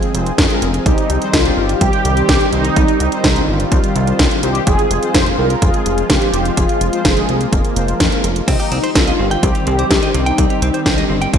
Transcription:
Already playing: F3 G#3 C4 F4 G#4
0.03 G#3 C4 F4 G#4, closed hi-hat
0.14 F1 G#3 C4 F4 C5, closed hi-hat
0.26 closed hi-hat
0.38 F2, kick, snare, closed hi-hat
0.50 G#3 C4 F4 A#4, closed hi-hat
0.62 F1, closed hi-hat
0.74 closed hi-hat
0.86 C2 D#3 G3 C4 D#4 G4, kick, closed hi-hat
0.98 closed hi-hat
1.10 C2, closed hi-hat
1.22 G3 C4 D#4 C5, closed hi-hat
1.33 C2 F4, kick, snare, closed hi-hat
1.45 closed hi-hat
1.57 G1 G3 C4 D#4 G4
1.69 closed hi-hat
1.81 C2 G4, kick, closed hi-hat
1.93 G3 C4 D#4 G4, closed hi-hat
2.05 C2 G4, closed hi-hat
2.17 G3 C4 D#4 C5, closed hi-hat
2.29 C2, kick, snare, closed hi-hat
2.41 closed hi-hat
2.53 C2 G3 C4 D#4 C5, closed hi-hat
2.65 closed hi-hat
2.76 C2 G3 C4 D#4 F4 G4, kick, closed hi-hat
2.88 closed hi-hat
3.00 C2, closed hi-hat
3.12 G3 C4 D#4 C5, closed hi-hat
3.24 C2, kick, snare, closed hi-hat
3.36 closed hi-hat
3.48 G1 G3 C4 D#4 G4
3.60 closed hi-hat
3.72 C2, kick, closed hi-hat
3.84 G3 C4 D#4 G4, closed hi-hat
3.96 C2, closed hi-hat
4.07 G3 C4 D#4 C5, closed hi-hat
4.19 C2, kick, snare, closed hi-hat
4.31 closed hi-hat
4.43 C2 G3 C4 D#4 G4 C5, closed hi-hat
4.55 closed hi-hat
4.67 F1 F3 G#3 C4 F4 G#4, kick, closed hi-hat
4.79 closed hi-hat
4.91 F1, closed hi-hat
5.03 G#3 C4 F4 C5, closed hi-hat
5.14 F1 C5, kick, snare, closed hi-hat
5.26 closed hi-hat
5.38 C2 G#3 C4 F4 G#4 A#4
5.50 closed hi-hat
5.62 F1 G#4, kick, closed hi-hat
5.74 G#3 C4 F4 G#4, closed hi-hat
5.86 F1, closed hi-hat
5.98 G#3 C4 F4 C5, closed hi-hat
6.10 F1 G4, kick, snare, closed hi-hat
6.22 closed hi-hat
6.34 F1 G#3 C4 F4 C5, closed hi-hat
6.45 closed hi-hat
6.57 F1 G#3 A#3 C4 F4 G#4, kick, closed hi-hat
6.69 closed hi-hat
6.81 F1, closed hi-hat
6.93 G#3 C4 F4 C5, closed hi-hat
7.05 F1 G#4, kick, snare, closed hi-hat
7.17 closed hi-hat
7.29 C2 G#3 C4 F4 G#4, closed hi-hat
7.41 closed hi-hat
7.53 F1, kick, closed hi-hat
7.64 G#3 C4 F4 G#4, closed hi-hat
7.76 F1 G#3 C4 F4 C5, closed hi-hat
7.88 closed hi-hat
8.00 F2, kick, snare, closed hi-hat
8.12 G#3 C4 F4 A#4, closed hi-hat
8.24 F1, closed hi-hat
8.36 closed hi-hat
8.48 C2 D#3 G3 C4 D#4 G4, kick, closed hi-hat, crash
8.60 G4, closed hi-hat
8.72 C2 C4, closed hi-hat
8.84 C5, closed hi-hat
8.95 C2 C4 F4, kick, snare, closed hi-hat
9.07 D#5, closed hi-hat
9.19 G1 C4
9.31 G5, closed hi-hat
9.43 C2 C4 G4, kick, closed hi-hat
9.55 G4, closed hi-hat
9.67 C2 C4 G4, closed hi-hat
9.79 C5, closed hi-hat
9.91 C2 C4, kick, snare, closed hi-hat
10.03 D#5, closed hi-hat
10.14 C2 C4 D#4, closed hi-hat
10.26 G5, closed hi-hat
10.38 C2 C4, kick, closed hi-hat
10.50 G4, closed hi-hat
10.62 C2 C4, closed hi-hat
10.74 C5, closed hi-hat
10.86 C2 C4, kick, snare, closed hi-hat
10.98 D#5, closed hi-hat
11.10 G1 C4
11.22 G5, closed hi-hat
11.33 C2 C4, kick, closed hi-hat

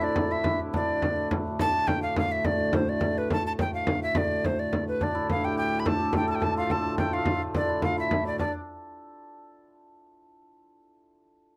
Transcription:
Already playing: D2 A2 A3 C4 E4 G4 A4
0.01 D4 D5, frame drum
0.16 frame drum
0.31 E4 E5
0.44 frame drum
0.73 D4 D5, frame drum
0.89 frame drum
1.02 frame drum
1.31 frame drum
1.59 D2 A2 A5, frame drum
1.74 frame drum
1.87 G5, frame drum
2.03 F5
2.16 F5, frame drum
2.32 E5
2.44 D5, frame drum
2.59 frame drum
2.73 C5, frame drum
2.89 D5
3.01 frame drum
3.18 B4
3.30 A5, frame drum
3.47 A5
3.59 G5, frame drum
3.74 F5
3.87 frame drum
4.03 E5
4.15 D5, frame drum
4.45 C5, frame drum
4.59 D5
4.73 frame drum
4.88 B4
5.01 D2 A2 D4 D5, frame drum
5.15 E4, frame drum
5.30 F5, frame drum
5.44 G4 G5
5.57 G4 G5
5.80 B5
5.85 A4 A5, frame drum
6.00 frame drum
6.13 G4 G5, frame drum
6.28 A4 A5
6.35 G5
6.40 A4 A5, frame drum
6.58 F4 F5
6.70 A4 A5, frame drum
6.85 frame drum
6.98 G5, frame drum
7.13 F4 F5
7.26 frame drum
7.55 D4 D5, frame drum
7.69 E4
7.82 F4 F5, frame drum
7.97 E4 E5, frame drum
8.11 frame drum
8.25 D4 D5, frame drum
8.39 D4 D5, frame drum

